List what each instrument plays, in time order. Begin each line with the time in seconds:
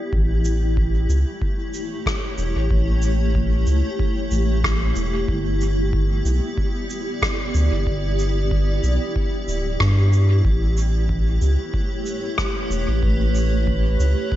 Already playing: ambient pad B3 E4 G4 D5
0.13 analog synth bass A1, ambient pad A3, kick
0.45 shaker
0.77 kick
1.09 analog synth bass C#2, ambient pad C#5, shaker
1.42 kick
1.74 shaker
2.06 kick, cross-stick
2.38 analog synth bass E1, shaker
2.56 analog synth bass A1
2.71 analog synth bass A1, kick
3.02 shaker
3.35 kick
3.67 analog synth bass C#2, shaker
3.99 kick
4.31 analog synth bass A1, shaker
4.64 kick, cross-stick
4.96 analog synth bass E1, shaker
5.28 analog synth bass G1, ambient pad B3, kick
5.61 shaker
5.89 ambient pad D5
5.93 kick
6.25 analog synth bass B1, shaker
6.58 kick
6.90 shaker
7.22 kick, cross-stick
7.54 analog synth bass D2, shaker
7.72 analog synth bass G1
7.87 analog synth bass G1, kick
8.19 shaker
8.51 kick
8.83 analog synth bass B1, shaker
9.16 kick
9.48 analog synth bass D1, shaker
9.80 analog synth bass G2, kick, cross-stick
10.13 shaker
10.45 analog synth bass A1, ambient pad A3, synth texture B4, kick
10.77 shaker
10.90 ambient pad C#5
11.09 kick
11.41 analog synth bass C#2, shaker
11.74 kick
12.06 shaker
12.38 kick, cross-stick
12.70 analog synth bass E1, shaker
12.88 analog synth bass A1
13.03 analog synth bass A1, kick
13.35 shaker
13.67 kick
13.99 analog synth bass C#2, shaker
14.32 kick